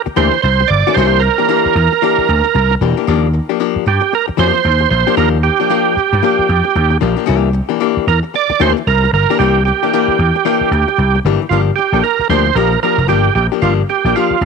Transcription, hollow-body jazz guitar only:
0.06 muted hollow-body jazz guitar stroke
0.16 E3 A#3 D4 G4
0.33 muted hollow-body jazz guitar stroke
0.44 muted hollow-body jazz guitar stroke
0.61 muted hollow-body jazz guitar stroke
0.87 E3 A#3 D4 G4
0.97 E3 A#3 D4 G4
1.23 muted hollow-body jazz guitar stroke
1.38 E3 A#3 D4 G4
1.49 E3 A#3 D4 G4
1.76 muted hollow-body jazz guitar stroke
1.92 muted hollow-body jazz guitar stroke
2.02 E3 A#3 D4 G4
2.29 muted hollow-body jazz guitar stroke
2.44 muted hollow-body jazz guitar stroke
2.54 muted hollow-body jazz guitar stroke
2.71 muted hollow-body jazz guitar stroke
2.81 E3 A#3 D4 G4
2.97 E3 A#3 D4 G4
3.07 F3 A#3 D4 G4
3.33 muted hollow-body jazz guitar stroke
3.49 F3 A#3 D4 G4
3.60 F3 A#3 D4 G4
3.86 muted hollow-body jazz guitar stroke
4.01 muted hollow-body jazz guitar stroke
4.13 muted hollow-body jazz guitar stroke
4.28 muted hollow-body jazz guitar stroke
4.37 F3 A#3 D4 G4
4.53 muted hollow-body jazz guitar stroke
4.64 muted hollow-body jazz guitar stroke
4.81 muted hollow-body jazz guitar stroke
5.07 F3 A#3 D4 G4
5.17 F3 A#3 D4 G4
5.43 muted hollow-body jazz guitar stroke
5.60 F3 A#3 D4 G4
5.70 F3 A#3 D4 G4
5.97 muted hollow-body jazz guitar stroke
6.13 muted hollow-body jazz guitar stroke
6.23 F3 A#3 D4 G4
6.49 muted hollow-body jazz guitar stroke
6.64 muted hollow-body jazz guitar stroke
6.75 muted hollow-body jazz guitar stroke
6.90 muted hollow-body jazz guitar stroke
7.01 F3 A#3 D4 G4
7.16 F3 A#3 D4 G4
7.26 E3 A#3 D4 G4
7.53 muted hollow-body jazz guitar stroke
7.69 E3 A#3 D4 G4
7.80 E3 A#3 D4 G4
8.08 muted hollow-body jazz guitar stroke
8.23 muted hollow-body jazz guitar stroke
8.34 muted hollow-body jazz guitar stroke
8.50 muted hollow-body jazz guitar stroke
8.60 E3 A#3 D4 G4
8.77 muted hollow-body jazz guitar stroke
8.87 muted hollow-body jazz guitar stroke
9.04 muted hollow-body jazz guitar stroke
9.30 E3 A#3 D4 G4
9.40 E3 A#3 D4 G4
9.67 muted hollow-body jazz guitar stroke
9.83 E3 A#3 D4 G4
9.93 E3 A#3 D4 G4
10.20 muted hollow-body jazz guitar stroke
10.36 muted hollow-body jazz guitar stroke
10.45 E3 A#3 D4 G4
10.72 muted hollow-body jazz guitar stroke
10.88 muted hollow-body jazz guitar stroke
10.99 muted hollow-body jazz guitar stroke
11.15 muted hollow-body jazz guitar stroke
11.26 E3 A#3 D4 G4
11.42 muted hollow-body jazz guitar stroke
11.51 F3 A#3 D4 G4
11.78 muted hollow-body jazz guitar stroke
11.94 F3 A#3 D4 A4
12.05 muted hollow-body jazz guitar stroke
12.21 muted hollow-body jazz guitar stroke
12.30 F3 A#3 D4 G4
12.46 muted hollow-body jazz guitar stroke
12.56 F3 A#3 D4 G4
12.72 muted hollow-body jazz guitar stroke
12.83 F3 A#3 D4 G4
12.98 muted hollow-body jazz guitar stroke
13.08 F3 A#3 D4 G4
13.36 muted hollow-body jazz guitar stroke
13.52 F3 A#3 D4 G4
13.62 F3 A#3 D4 G4
13.89 muted hollow-body jazz guitar stroke
14.06 F3 A#3 D4 G4
14.16 F3 A#3 D4 G4
14.41 muted hollow-body jazz guitar stroke

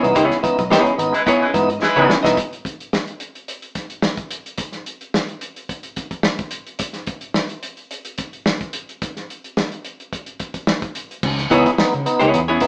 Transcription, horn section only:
1.12 G#3 E4 B4
1.40 G#3 E4 B4
1.81 G#3 E4 B4

